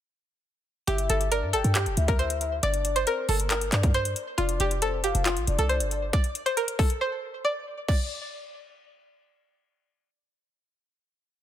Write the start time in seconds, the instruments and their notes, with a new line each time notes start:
0.87 808-style bass G1, synth pluck G4, soft synth lead E5, closed hi-hat
0.98 closed hi-hat
1.10 808-style bass G1, synth pluck A4, closed hi-hat
1.21 closed hi-hat
1.31 synth pluck A#4, soft synth lead D5, closed hi-hat
1.43 808-style bass G2
1.53 808-style bass G1, synth pluck A4, soft synth lead G5, closed hi-hat
1.64 808-style bass G2, closed hi-hat
1.75 synth pluck G4, clap, closed hi-hat
1.86 808-style bass F1, closed hi-hat
1.97 808-style bass D2, soft synth lead E5, closed hi-hat
2.08 synth pluck A#4, kick, closed hi-hat
2.19 synth pluck C5, closed hi-hat
2.30 closed hi-hat
2.41 closed hi-hat
2.63 808-style bass G1, soft synth lead D5, synth pluck D5, closed hi-hat
2.74 closed hi-hat
2.85 closed hi-hat
2.96 synth pluck C5, closed hi-hat
3.07 synth pluck A#4, soft synth lead C5, closed hi-hat
3.28 808-style bass G1, synth pluck A4, soft synth lead A#4, open hi-hat
3.40 closed hi-hat
3.50 synth pluck A#4, clap, closed hi-hat
3.61 closed hi-hat
3.72 808-style bass G2, soft synth lead D5, clap, closed hi-hat
3.83 kick, closed hi-hat
3.94 synth pluck C5, closed hi-hat
4.05 closed hi-hat
4.16 closed hi-hat
4.38 808-style bass F1, synth pluck F4, soft synth lead D5, closed hi-hat
4.49 closed hi-hat
4.60 808-style bass F1, synth pluck G4, closed hi-hat
4.71 closed hi-hat
4.82 synth pluck A4, soft synth lead C5, closed hi-hat
5.04 synth pluck G4, soft synth lead F5, closed hi-hat
5.15 808-style bass F1, closed hi-hat
5.25 synth pluck F4, clap, closed hi-hat
5.37 808-style bass A1, closed hi-hat
5.47 808-style bass F1, soft synth lead D5, closed hi-hat
5.59 808-style bass C2, synth pluck A4, closed hi-hat
5.69 synth pluck C5, closed hi-hat
5.80 808-style bass G1, closed hi-hat
5.91 closed hi-hat
6.13 synth pluck D5, kick, closed hi-hat
6.24 closed hi-hat
6.35 closed hi-hat
6.46 synth pluck C5, closed hi-hat
6.57 synth pluck A#4, closed hi-hat
6.68 closed hi-hat
6.79 synth pluck A4, kick, open hi-hat
6.90 closed hi-hat
7.01 synth pluck C5
7.45 synth pluck D5
7.88 synth pluck D5, kick, crash